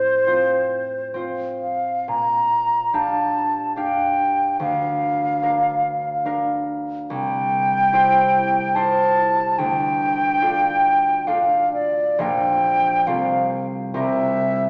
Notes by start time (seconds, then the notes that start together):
Already playing: A2 C4 F4 A4 C5
0.27 C4 F4 C5
1.14 C4 F4 C5
1.61 F5
2.08 A#2 A#5
2.93 D4 G4 F5 A5
3.76 D4 G4 F5 G5
4.60 D2 F5
5.42 D4 A#4 F5
6.25 D4 A#4 F5
7.10 C2 G5
7.92 E4 G4 C5
8.75 E4 G4 C5 A5
9.58 D2 G5
10.42 D4 F4 A4
11.27 D4 F4 A4 F5
11.74 D5
12.19 A#1 D4 F4 A#4 G5
13.07 C2 C4 F4 A4 F5
13.94 C2 C4 G4 A#4 E5